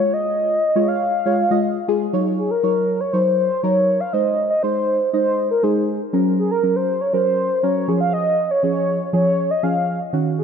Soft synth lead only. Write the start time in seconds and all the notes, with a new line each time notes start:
Already playing: C#5
0.13 D#5
0.88 F5
2.38 G#4
2.51 A#4
3.00 C#5
3.13 C5
3.38 C5
3.63 C#5
4.00 F5
4.13 D#5
4.50 D#5
4.63 C5
5.13 C5
5.51 A#4
5.63 G#4
6.39 G#4
6.51 A#4
6.76 C5
7.01 C#5
7.13 C5
7.63 C#5
8.01 F5
8.13 D#5
8.51 C#5
8.63 C#5
9.13 C#5
9.51 D#5
9.63 F5
10.38 G#4